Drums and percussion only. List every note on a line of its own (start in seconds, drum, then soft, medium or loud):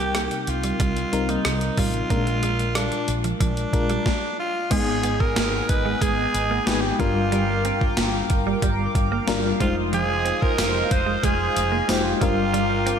0.15 cross-stick loud
0.15 closed hi-hat medium
0.31 closed hi-hat soft
0.47 closed hi-hat medium
0.63 closed hi-hat medium
0.80 kick medium
0.80 closed hi-hat medium
0.97 closed hi-hat soft
1.13 closed hi-hat medium
1.29 closed hi-hat soft
1.45 cross-stick loud
1.45 closed hi-hat medium
1.61 closed hi-hat medium
1.77 kick medium
1.77 open hi-hat medium
1.94 closed hi-hat soft
2.10 kick loud
2.10 closed hi-hat medium
2.27 closed hi-hat medium
2.43 closed hi-hat medium
2.59 closed hi-hat soft
2.75 cross-stick loud
2.75 closed hi-hat medium
2.92 closed hi-hat soft
3.08 closed hi-hat medium
3.24 closed hi-hat medium
3.41 kick medium
3.41 closed hi-hat medium
3.57 closed hi-hat soft
3.73 kick medium
3.73 closed hi-hat medium
3.90 closed hi-hat soft
4.06 kick loud
4.06 snare medium
4.71 kick loud
4.71 closed hi-hat medium
4.71 crash medium
5.03 closed hi-hat medium
5.20 kick medium
5.36 snare loud
5.36 closed hi-hat medium
5.69 kick medium
5.69 closed hi-hat medium
6.01 kick medium
6.01 closed hi-hat loud
6.34 closed hi-hat medium
6.67 snare loud
6.67 closed hi-hat medium
7.00 kick loud
7.00 closed hi-hat medium
7.32 closed hi-hat medium
7.65 closed hi-hat medium
7.81 kick medium
7.97 snare loud
7.97 closed hi-hat medium
8.30 kick loud
8.30 closed hi-hat medium
8.62 kick medium
8.62 closed hi-hat loud
8.95 kick medium
8.95 closed hi-hat medium
9.28 snare loud
9.28 closed hi-hat medium
9.60 kick loud
9.60 closed hi-hat medium
9.93 closed hi-hat medium
10.26 closed hi-hat medium
10.42 kick medium
10.58 snare loud
10.58 closed hi-hat medium
10.58 tambourine medium
10.91 kick loud
10.91 closed hi-hat medium
11.23 kick medium
11.23 closed hi-hat loud
11.57 closed hi-hat medium
11.89 snare loud
11.89 closed hi-hat medium
11.89 tambourine medium
12.21 kick loud
12.21 closed hi-hat medium
12.54 closed hi-hat medium
12.87 closed hi-hat medium